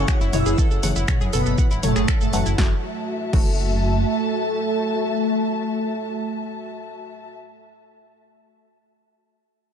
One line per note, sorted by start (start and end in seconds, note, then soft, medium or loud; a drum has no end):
0.00 0.20 C#3 medium
0.00 0.80 C#3 loud
0.00 0.80 E3 medium
0.00 2.54 F#3 medium
0.00 0.80 A3 loud
0.00 0.20 C#4 loud
0.00 2.54 E4 medium
0.00 2.58 E4 medium
0.00 0.20 C#5 loud
0.00 2.54 C#5 loud
0.00 2.58 C#5 medium
0.00 2.58 F#5 medium
0.08 0.18 F#5 medium
0.08 finger snap loud
0.08 kick loud
0.08 shaker medium
0.21 0.30 F#1 medium
0.21 0.33 E4 loud
0.21 shaker soft
0.33 0.42 F#1 loud
0.33 0.66 E3 medium
0.33 0.66 E4 loud
0.33 0.39 C#5 medium
0.33 0.66 E5 loud
0.33 open hi-hat medium
0.33 mid tom loud
0.33 shaker medium
0.46 0.55 F#1 loud
0.46 0.52 G#4 loud
0.46 shaker soft
0.58 0.68 A4 loud
0.58 kick loud
0.58 shaker medium
0.71 0.80 F#1 medium
0.71 0.83 A4 medium
0.71 shaker soft
0.83 0.92 F#1 loud
0.83 2.31 C#3 loud
0.83 2.31 E3 medium
0.83 2.31 A3 loud
0.83 0.93 F#5 medium
0.83 open hi-hat loud
0.83 shaker medium
0.96 1.05 F#1 loud
0.96 1.08 E4 loud
0.96 shaker soft
1.08 1.14 C#5 medium
1.08 finger snap loud
1.08 kick loud
1.08 mid tom loud
1.08 shaker medium
1.21 1.30 F#2 medium
1.21 1.27 G#4 loud
1.21 shaker soft
1.33 1.42 F#1 loud
1.33 1.66 B2 medium
1.33 1.66 B3 loud
1.33 1.43 A4 loud
1.33 1.66 B4 loud
1.33 open hi-hat medium
1.33 shaker medium
1.46 1.55 F#1 medium
1.46 1.58 A4 medium
1.46 shaker soft
1.58 1.68 F#5 medium
1.58 kick loud
1.58 shaker medium
1.71 1.79 G#1 medium
1.71 1.83 E4 loud
1.71 shaker soft
1.83 1.92 F#1 medium
1.83 2.08 A2 medium
1.83 2.08 A3 loud
1.83 2.08 A4 loud
1.83 1.89 C#5 medium
1.83 open hi-hat loud
1.83 mid tom loud
1.83 shaker medium
1.96 2.05 F#1 medium
1.96 2.02 G#4 loud
1.96 finger snap soft
1.96 shaker soft
2.08 2.18 A4 loud
2.08 finger snap loud
2.08 kick loud
2.08 shaker medium
2.21 2.30 F#1 medium
2.21 2.45 A2 medium
2.21 2.45 A3 loud
2.21 2.45 A4 loud
2.21 2.33 A4 medium
2.21 shaker soft
2.33 2.42 F#1 medium
2.33 2.57 E3 loud
2.33 2.57 F#3 medium
2.33 2.57 A3 loud
2.33 2.43 F#5 medium
2.33 open hi-hat medium
2.33 shaker medium
2.46 2.55 F#1 loud
2.46 2.58 E4 loud
2.46 shaker medium
2.58 2.72 F#1 loud
2.58 2.72 E3 medium
2.58 2.72 F#3 medium
2.58 2.72 A3 medium
2.58 7.29 A3 medium
2.58 2.72 F#4 loud
2.58 7.29 F#4 medium
2.58 2.72 A4 medium
2.58 7.29 E5 loud
2.58 kick loud
2.58 snare medium
2.66 7.34 E5 medium
2.73 7.34 A5 medium
3.33 4.04 F#1 loud
3.33 8.04 E3 medium
3.33 8.04 F#3 medium
3.33 8.04 A3 medium
3.33 7.34 A3 loud
3.33 3.47 F#4 medium
3.33 7.34 A4 loud
3.33 kick loud
3.33 crash medium